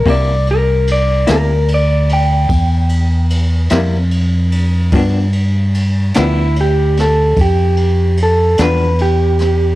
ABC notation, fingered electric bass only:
X:1
M:12/8
L:1/8
Q:3/8=49
K:C
V:1 name="Fingered electric bass" clef=bass
C,,3 D,,3 E,,3 F,,3 | G,,3 D,,3 F,,3 E,,3 |]